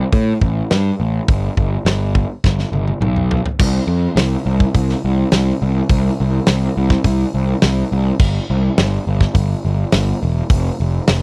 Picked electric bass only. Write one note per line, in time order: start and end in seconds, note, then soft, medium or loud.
0.13 0.32 A2 medium
0.41 0.61 A1 medium
0.71 0.90 G2 medium
1.00 1.19 A1 medium
1.29 1.48 G1 medium
1.57 1.76 G1 medium
1.85 2.24 G1 medium
2.45 2.64 G1 medium
2.72 2.91 G1 medium
3.01 3.39 B1 medium
3.60 3.79 C2 medium
3.87 4.07 F2 medium
4.16 4.35 C2 loud
4.46 4.65 C2 medium
4.75 4.94 C2 loud
5.05 5.23 C2 medium
5.32 5.51 C2 medium
5.62 5.81 C2 loud
5.90 6.09 C2 loud
6.20 6.39 C2 medium
6.48 6.67 C2 medium
6.77 6.96 C2 medium
7.04 7.24 C2 medium
7.34 7.53 C2 medium
7.64 7.82 C2 loud
7.92 8.11 C2 medium
8.20 8.39 G1 loud
8.50 8.68 C2 medium
8.79 8.97 G1 loud
9.07 9.26 G1 medium
9.35 9.54 G1 loud
9.65 9.83 G1 medium
9.93 10.12 G1 loud
10.23 10.41 E1 medium
10.50 10.69 F1 loud
10.80 10.99 F1 medium
11.09 11.22 F1 medium